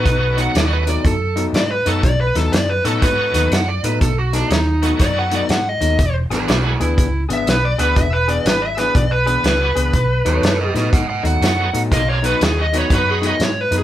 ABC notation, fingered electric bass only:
X:1
M:4/4
L:1/8
Q:"Swing" 1/4=122
K:Bmix
V:1 name="Fingered electric bass" clef=bass
B,,,2 D,,2 F,,2 G,, F,, | B,,, D,, F,, A,, G,, D,, F,, A,, | B,,,2 D,,2 F,,2 G,, D,, | E,,, G,,, B,,, =D,, C,, G,,, B,,, D,, |
E,,,2 G,,,2 B,,,2 C,, C,, | B,,, D,, F,, A,, G,, D,, F,, A,, | B,,,2 D,,2 F,,2 G,, F,, |]